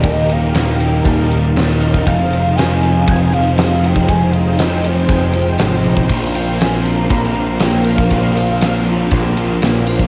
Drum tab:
CC |----------------|----------------|----------------|x---------------|
RD |x-x-x-x-x-x-x-x-|x-x-x-x-x-x-x-x-|x-x-x-x-x-x-x-x-|--x-x-x-x-x-x-x-|
SD |----o-------o---|----o-------o---|----o-------o---|----o----o--o---|
BD |o-------o------o|o-------o------o|o-------o------o|o-------o------o|

CC |----------------|
RD |x-x-x-x-x-x-x-x-|
SD |----o-------o---|
BD |o-------o------o|